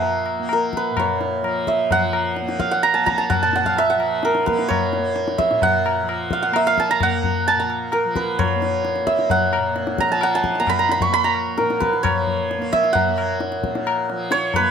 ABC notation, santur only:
X:1
M:4/4
L:1/16
Q:1/4=130
K:none
V:1 name="Santur"
_g2 z2 _B2 _c2 _d6 e2 | _g6 f g _b a b a g a g f | e _g z2 _B2 _c2 _d6 e2 | _g6 f g e f a _b g4 |
a _b z2 _B2 _c2 _d6 e2 | _g6 _b a g a2 b _c' b c' _d' | _c' _b z2 _B2 _c2 _d6 e2 | _g6 z6 _d2 _c2 |]